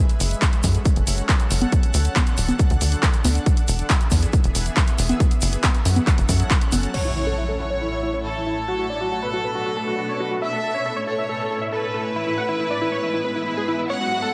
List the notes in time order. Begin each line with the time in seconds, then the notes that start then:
0.00 F#3 C#4 A4 F#5
0.09 closed hi-hat, shaker
0.20 F#1, open hi-hat, shaker
0.31 closed hi-hat, shaker
0.42 kick, clap, closed hi-hat, shaker
0.53 closed hi-hat, shaker
0.63 F#2, kick, open hi-hat, shaker
0.75 closed hi-hat, shaker
0.85 kick, closed hi-hat, shaker
0.96 F#1, closed hi-hat, shaker
1.07 F#1, open hi-hat, shaker
1.18 closed hi-hat, shaker
1.29 kick, clap, closed hi-hat, shaker
1.40 closed hi-hat, shaker
1.51 F#1, open hi-hat, shaker
1.61 closed hi-hat, high conga, shaker
1.72 D3 D4, kick, closed hi-hat, shaker
1.83 closed hi-hat, shaker
1.94 D2, open hi-hat, shaker
2.04 closed hi-hat, shaker
2.16 kick, clap, closed hi-hat, high conga, shaker
2.26 closed hi-hat, shaker
2.38 D1, open hi-hat, shaker
2.49 closed hi-hat, high conga, shaker
2.59 kick, closed hi-hat, shaker
2.70 D2, closed hi-hat, shaker
2.81 D2, open hi-hat, shaker
2.92 closed hi-hat, shaker
3.03 kick, clap, closed hi-hat, shaker
3.13 closed hi-hat, shaker
3.24 D2, open hi-hat, high conga, shaker
3.35 closed hi-hat, shaker
3.46 E3 B3 G#4 E5, kick, closed hi-hat, shaker
3.57 closed hi-hat, shaker
3.68 E1, open hi-hat, shaker
3.79 closed hi-hat, shaker
3.90 kick, clap, closed hi-hat, shaker
4.01 closed hi-hat, shaker
4.11 E2, kick, open hi-hat, shaker
4.22 closed hi-hat, shaker
4.33 kick, closed hi-hat, shaker
4.44 E1, closed hi-hat, shaker
4.55 E1, open hi-hat, shaker
4.66 closed hi-hat, shaker
4.77 kick, clap, closed hi-hat, shaker
4.87 closed hi-hat, shaker
4.98 E1, open hi-hat, shaker
5.09 closed hi-hat, high conga, shaker
5.20 F#3 C#4 A4 F#5, kick, closed hi-hat, shaker
5.31 closed hi-hat, shaker
5.41 F#1, open hi-hat, shaker
5.52 closed hi-hat, shaker
5.64 kick, clap, closed hi-hat, high conga, shaker
5.75 closed hi-hat, shaker
5.85 F#2, open hi-hat, shaker
5.96 closed hi-hat, high conga, shaker
6.07 kick, clap, closed hi-hat, shaker
6.18 F#1, closed hi-hat, shaker
6.29 F#2, kick, open hi-hat, shaker
6.40 closed hi-hat, shaker
6.50 kick, clap, closed hi-hat, shaker
6.61 closed hi-hat, shaker
6.72 F#1, open hi-hat, high conga, shaker
6.83 closed hi-hat, shaker
6.94 A2 A3 E4 C#5, crash, impact
7.05 E4
7.16 E4
7.27 A4
7.38 E4
7.48 A4
7.59 E4 C#5
7.70 C#5
7.81 E4
7.92 E4
8.03 E4
8.14 C#5
8.24 E4 A4
8.36 E4
8.46 E4
8.68 B2 D4 F#4 B4
8.79 F#4
8.90 D5
9.01 F#4
9.12 F#4
9.22 B4
9.33 F#4
9.44 B4
9.55 F#4
9.66 F#4
9.77 A4
9.87 F#4
9.98 F#4
10.09 C#5
10.20 F#4
10.31 F#4
10.42 A2 C#4 E4 E5
10.53 A4
10.63 A4
10.74 C#5
10.85 A4
10.96 C#5
11.07 A4 C#5
11.18 E5
11.29 A4
11.40 A4
11.51 A4
11.61 E5
11.72 A4 B4
11.83 A4
11.94 A4
12.16 G#2 G#3 B3 E4
12.27 E4
12.38 F#5
12.49 E4
12.60 E4
12.70 D5
12.81 E4
12.92 C#5
13.03 E4
13.14 E4
13.24 B4
13.35 E4
13.46 E4
13.57 G#4
13.68 E4
13.79 E4
13.90 C#5 F#5
14.01 F#4
14.11 F#4
14.22 A4